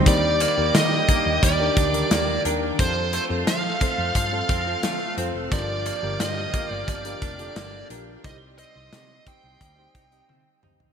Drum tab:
HH |x-x-x-x-x-xxx-x-|x-x-x-x-x-x-x-x-|x-x-x-x-xxxxx-x-|x-x-x-x-x-xx----|
SD |----o-------o---|----o-------o---|----o-------o---|----o-----------|
T1 |----------------|----------------|----------------|------------o---|
T2 |----------------|----------------|----------------|--------------o-|
FT |----------------|----------------|----------------|---------------o|
BD |o-----o-o-o-----|o-----o-o-o-----|o-----o-o-o-----|o-----o-o-o-----|